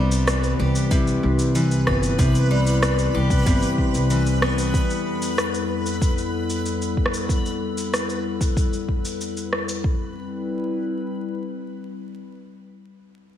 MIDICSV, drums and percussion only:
0, 0, Header, 1, 2, 480
1, 0, Start_track
1, 0, Key_signature, 0, "major"
1, 0, Tempo, 638298
1, 1642, Time_signature, 4, 2, 24, 8
1, 10057, End_track
2, 0, Start_track
2, 0, Title_t, "Drums"
2, 87, Note_on_c, 9, 82, 65
2, 163, Note_off_c, 9, 82, 0
2, 206, Note_on_c, 9, 37, 77
2, 208, Note_on_c, 9, 82, 49
2, 282, Note_off_c, 9, 37, 0
2, 283, Note_off_c, 9, 82, 0
2, 327, Note_on_c, 9, 82, 31
2, 402, Note_off_c, 9, 82, 0
2, 568, Note_on_c, 9, 82, 61
2, 643, Note_off_c, 9, 82, 0
2, 684, Note_on_c, 9, 36, 122
2, 686, Note_on_c, 9, 82, 50
2, 760, Note_off_c, 9, 36, 0
2, 761, Note_off_c, 9, 82, 0
2, 807, Note_on_c, 9, 82, 28
2, 882, Note_off_c, 9, 82, 0
2, 1046, Note_on_c, 9, 82, 61
2, 1121, Note_off_c, 9, 82, 0
2, 1168, Note_on_c, 9, 82, 55
2, 1243, Note_off_c, 9, 82, 0
2, 1288, Note_on_c, 9, 82, 28
2, 1363, Note_off_c, 9, 82, 0
2, 1404, Note_on_c, 9, 36, 56
2, 1406, Note_on_c, 9, 37, 63
2, 1479, Note_off_c, 9, 36, 0
2, 1481, Note_off_c, 9, 37, 0
2, 1527, Note_on_c, 9, 82, 59
2, 1602, Note_off_c, 9, 82, 0
2, 1644, Note_on_c, 9, 36, 113
2, 1646, Note_on_c, 9, 82, 53
2, 1719, Note_off_c, 9, 36, 0
2, 1721, Note_off_c, 9, 82, 0
2, 1767, Note_on_c, 9, 82, 31
2, 1842, Note_off_c, 9, 82, 0
2, 2006, Note_on_c, 9, 82, 66
2, 2081, Note_off_c, 9, 82, 0
2, 2125, Note_on_c, 9, 37, 73
2, 2126, Note_on_c, 9, 82, 48
2, 2200, Note_off_c, 9, 37, 0
2, 2201, Note_off_c, 9, 82, 0
2, 2246, Note_on_c, 9, 82, 33
2, 2321, Note_off_c, 9, 82, 0
2, 2483, Note_on_c, 9, 36, 97
2, 2486, Note_on_c, 9, 82, 55
2, 2559, Note_off_c, 9, 36, 0
2, 2561, Note_off_c, 9, 82, 0
2, 2603, Note_on_c, 9, 36, 122
2, 2606, Note_on_c, 9, 82, 51
2, 2679, Note_off_c, 9, 36, 0
2, 2681, Note_off_c, 9, 82, 0
2, 2725, Note_on_c, 9, 82, 32
2, 2800, Note_off_c, 9, 82, 0
2, 2844, Note_on_c, 9, 36, 57
2, 2919, Note_off_c, 9, 36, 0
2, 2966, Note_on_c, 9, 82, 60
2, 3041, Note_off_c, 9, 82, 0
2, 3085, Note_on_c, 9, 82, 52
2, 3161, Note_off_c, 9, 82, 0
2, 3206, Note_on_c, 9, 82, 30
2, 3282, Note_off_c, 9, 82, 0
2, 3325, Note_on_c, 9, 37, 67
2, 3400, Note_off_c, 9, 37, 0
2, 3447, Note_on_c, 9, 82, 60
2, 3522, Note_off_c, 9, 82, 0
2, 3564, Note_on_c, 9, 36, 101
2, 3567, Note_on_c, 9, 82, 54
2, 3639, Note_off_c, 9, 36, 0
2, 3642, Note_off_c, 9, 82, 0
2, 3687, Note_on_c, 9, 82, 30
2, 3762, Note_off_c, 9, 82, 0
2, 3928, Note_on_c, 9, 82, 65
2, 4003, Note_off_c, 9, 82, 0
2, 4047, Note_on_c, 9, 37, 71
2, 4049, Note_on_c, 9, 82, 51
2, 4122, Note_off_c, 9, 37, 0
2, 4124, Note_off_c, 9, 82, 0
2, 4169, Note_on_c, 9, 82, 34
2, 4244, Note_off_c, 9, 82, 0
2, 4408, Note_on_c, 9, 82, 60
2, 4484, Note_off_c, 9, 82, 0
2, 4523, Note_on_c, 9, 36, 113
2, 4528, Note_on_c, 9, 82, 55
2, 4598, Note_off_c, 9, 36, 0
2, 4603, Note_off_c, 9, 82, 0
2, 4648, Note_on_c, 9, 82, 30
2, 4723, Note_off_c, 9, 82, 0
2, 4887, Note_on_c, 9, 82, 58
2, 4962, Note_off_c, 9, 82, 0
2, 5007, Note_on_c, 9, 82, 50
2, 5082, Note_off_c, 9, 82, 0
2, 5128, Note_on_c, 9, 82, 29
2, 5203, Note_off_c, 9, 82, 0
2, 5244, Note_on_c, 9, 36, 57
2, 5307, Note_on_c, 9, 37, 64
2, 5319, Note_off_c, 9, 36, 0
2, 5368, Note_on_c, 9, 82, 59
2, 5382, Note_off_c, 9, 37, 0
2, 5443, Note_off_c, 9, 82, 0
2, 5483, Note_on_c, 9, 36, 103
2, 5489, Note_on_c, 9, 82, 50
2, 5558, Note_off_c, 9, 36, 0
2, 5564, Note_off_c, 9, 82, 0
2, 5608, Note_on_c, 9, 82, 30
2, 5683, Note_off_c, 9, 82, 0
2, 5847, Note_on_c, 9, 82, 63
2, 5923, Note_off_c, 9, 82, 0
2, 5968, Note_on_c, 9, 37, 67
2, 5969, Note_on_c, 9, 82, 49
2, 6043, Note_off_c, 9, 37, 0
2, 6044, Note_off_c, 9, 82, 0
2, 6087, Note_on_c, 9, 82, 31
2, 6162, Note_off_c, 9, 82, 0
2, 6323, Note_on_c, 9, 36, 90
2, 6327, Note_on_c, 9, 82, 55
2, 6398, Note_off_c, 9, 36, 0
2, 6402, Note_off_c, 9, 82, 0
2, 6442, Note_on_c, 9, 36, 113
2, 6447, Note_on_c, 9, 82, 48
2, 6518, Note_off_c, 9, 36, 0
2, 6522, Note_off_c, 9, 82, 0
2, 6566, Note_on_c, 9, 82, 28
2, 6641, Note_off_c, 9, 82, 0
2, 6682, Note_on_c, 9, 36, 51
2, 6757, Note_off_c, 9, 36, 0
2, 6805, Note_on_c, 9, 82, 56
2, 6880, Note_off_c, 9, 82, 0
2, 6926, Note_on_c, 9, 82, 49
2, 7001, Note_off_c, 9, 82, 0
2, 7046, Note_on_c, 9, 82, 26
2, 7121, Note_off_c, 9, 82, 0
2, 7163, Note_on_c, 9, 37, 55
2, 7239, Note_off_c, 9, 37, 0
2, 7285, Note_on_c, 9, 82, 60
2, 7360, Note_off_c, 9, 82, 0
2, 7401, Note_on_c, 9, 36, 96
2, 7476, Note_off_c, 9, 36, 0
2, 10057, End_track
0, 0, End_of_file